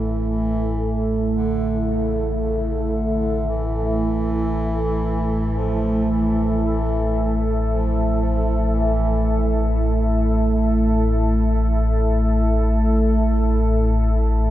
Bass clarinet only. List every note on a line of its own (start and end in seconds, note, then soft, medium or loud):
0.00 0.30 E3 medium
0.30 1.07 E3 loud
1.36 1.91 D3 loud
1.89 2.40 C#3 medium
2.41 2.96 C#3 medium
2.94 3.50 D3 medium
3.49 5.59 E3 loud
5.58 6.13 F3 loud
6.11 6.64 E3 medium
6.66 7.40 E3 medium
7.69 8.18 F3 medium
8.22 8.77 F3 medium
8.75 9.54 E3 medium